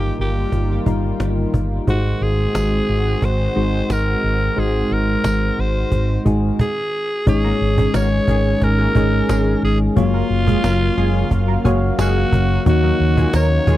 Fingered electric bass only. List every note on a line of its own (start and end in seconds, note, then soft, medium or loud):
0.19 0.43 G1 loud
0.52 0.77 G1 medium
0.86 1.11 G1 medium
1.20 1.44 G1 medium
1.54 1.78 G1 medium
1.87 2.12 G#1 loud
2.21 2.45 G#1 loud
2.55 2.79 G#1 loud
2.89 3.13 G#1 medium
3.22 3.46 G#1 loud
3.56 3.80 G#1 medium
3.90 4.14 G#1 medium
4.24 4.48 G#1 medium
4.58 4.82 G#1 loud
4.91 5.15 G#1 medium
5.25 5.49 G#1 loud
5.58 5.83 G#1 medium
5.92 6.16 G#1 loud
6.26 6.50 G#1 medium
7.27 7.51 G#1 loud
7.61 7.85 G#1 medium
7.95 8.19 G#1 loud
8.28 8.52 G#1 loud
8.62 8.86 G#1 loud
8.95 9.20 G#1 medium
9.29 9.53 G#1 loud
9.63 9.87 G#1 medium
9.97 10.21 F#1 loud
10.30 10.54 F#1 loud
10.64 10.88 F#1 loud
10.97 11.22 F#1 medium
11.31 11.55 F#1 loud
11.65 11.89 F#1 loud
11.98 12.23 F#1 loud
12.32 12.57 F#1 loud
12.66 12.90 D#2 loud
13.00 13.24 D#2 loud
13.34 13.58 D#2 loud
13.67 13.77 D#2 loud